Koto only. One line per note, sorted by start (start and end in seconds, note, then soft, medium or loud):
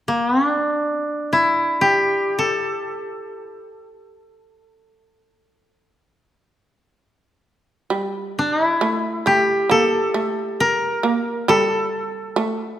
0.08 0.47 A#3 soft
0.47 2.51 D4 soft
1.33 3.59 E4 medium
1.81 3.85 G4 medium
2.39 5.86 A4 medium
8.39 8.64 D4 medium
8.64 10.65 E4 medium
9.27 11.31 G4 medium
9.71 10.66 A4 medium
10.60 11.55 A#4 medium
11.49 12.79 A4 medium